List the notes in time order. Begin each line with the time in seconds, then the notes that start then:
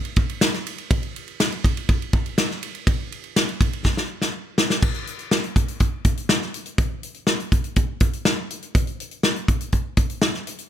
0.05 ride
0.16 kick, ride
0.29 ride
0.41 snare, ride
0.54 snare, ride
0.67 ride
0.78 ride
0.91 kick, ride
1.03 ride
1.16 ride
1.28 ride
1.40 snare, ride
1.52 ride
1.64 kick, ride
1.77 ride
1.89 kick, ride
2.02 ride
2.13 kick, ride
2.26 ride
2.38 snare, ride
2.51 snare
2.63 ride
2.75 ride
2.87 kick, ride
3.12 ride
3.24 ride
3.36 snare, ride
3.49 ride
3.61 kick, ride
3.73 ride
3.85 kick, snare
3.97 snare
4.22 snare
4.58 snare
4.70 snare
4.83 kick, crash
4.94 closed hi-hat
5.07 closed hi-hat
5.19 closed hi-hat
5.31 snare
5.44 closed hi-hat
5.56 kick, closed hi-hat
5.68 closed hi-hat
5.80 kick, closed hi-hat
6.05 kick, closed hi-hat
6.17 closed hi-hat
6.29 snare
6.42 snare
6.54 closed hi-hat
6.66 closed hi-hat
6.78 kick, closed hi-hat
7.03 closed hi-hat
7.14 closed hi-hat
7.27 snare
7.40 closed hi-hat
7.52 kick, closed hi-hat
7.64 closed hi-hat
7.76 kick, closed hi-hat
8.00 kick, closed hi-hat
8.13 closed hi-hat
8.25 snare
8.50 closed hi-hat
8.62 closed hi-hat
8.75 kick, closed hi-hat
8.87 closed hi-hat
9.00 closed hi-hat
9.11 closed hi-hat
9.23 snare
9.36 closed hi-hat
9.48 kick, closed hi-hat
9.61 closed hi-hat
9.72 kick, closed hi-hat
9.97 kick, closed hi-hat
10.10 closed hi-hat
10.22 snare
10.34 snare
10.47 closed hi-hat
10.58 closed hi-hat